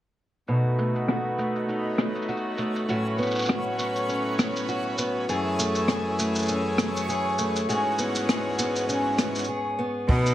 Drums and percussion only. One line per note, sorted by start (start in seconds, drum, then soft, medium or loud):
0.48 shaker soft
0.79 shaker medium
0.95 shaker soft
1.08 cross-stick medium
1.08 shaker soft
1.39 shaker medium
1.56 shaker soft
1.69 shaker soft
1.98 cross-stick medium
1.98 shaker medium
2.15 shaker soft
2.22 shaker soft
2.28 shaker soft
2.37 shaker soft
2.58 shaker medium
2.76 shaker medium
2.89 shaker soft
3.18 shaker soft
3.23 shaker soft
3.27 shaker soft
3.31 shaker soft
3.35 shaker medium
3.39 shaker medium
3.42 shaker medium
3.45 shaker medium
3.49 cross-stick medium
3.49 shaker soft
3.79 shaker medium
3.96 shaker soft
4.09 shaker soft
4.39 cross-stick medium
4.39 shaker medium
4.56 shaker medium
4.68 shaker soft
4.98 shaker medium
5.29 shaker soft
5.59 shaker medium
5.75 shaker medium
5.88 cross-stick medium
5.88 shaker soft
6.19 shaker medium
6.35 shaker medium
6.39 shaker soft
6.42 shaker soft
6.46 shaker soft
6.48 shaker soft
6.78 cross-stick medium
6.78 shaker medium
6.97 shaker medium
7.10 shaker soft
7.38 shaker medium
7.56 shaker soft
7.70 shaker soft
7.99 shaker medium
8.15 shaker medium
8.29 cross-stick medium
8.29 shaker soft
8.59 shaker medium
8.76 shaker soft
8.89 shaker soft
9.18 cross-stick medium
9.18 shaker medium
9.35 shaker medium
9.39 shaker soft
9.44 shaker soft
10.09 kick loud
10.09 open hi-hat medium
10.26 shaker soft